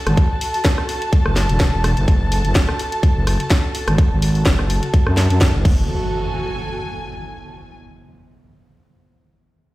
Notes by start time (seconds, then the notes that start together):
Already playing: F#4 A4 A5
0.07 G#1, cross-stick, closed hi-hat
0.17 kick, closed hi-hat
0.41 open hi-hat
0.54 open hi-hat
0.65 kick, snare, closed hi-hat
0.78 cross-stick
0.89 open hi-hat
1.02 closed hi-hat
1.13 kick, closed hi-hat
1.26 F#1, cross-stick
1.36 snare, open hi-hat
1.49 E1, closed hi-hat
1.60 kick, snare, closed hi-hat
1.73 E1
1.84 cross-stick, open hi-hat
1.97 F#1, closed hi-hat
2.08 F#1, kick, closed hi-hat
2.32 open hi-hat
2.45 F#1, closed hi-hat
2.55 F#1, kick, snare, closed hi-hat
2.69 cross-stick
2.79 open hi-hat
2.92 closed hi-hat
3.03 kick, closed hi-hat
3.16 F#1
3.27 cross-stick, open hi-hat
3.40 closed hi-hat
3.50 kick, snare, closed hi-hat
3.75 open hi-hat
3.88 G#1, cross-stick, closed hi-hat
3.98 kick, closed hi-hat
4.11 G#1
4.22 open hi-hat
4.35 open hi-hat
4.46 F#1, kick, snare, closed hi-hat
4.59 cross-stick
4.70 open hi-hat
4.83 closed hi-hat
4.94 kick, closed hi-hat
5.07 F#2, cross-stick
5.17 snare, open hi-hat
5.30 F#2, closed hi-hat
5.41 kick, snare, closed hi-hat
5.54 F#1
5.65 F#1 F#4, kick, crash, impact
5.73 A4
6.04 G#5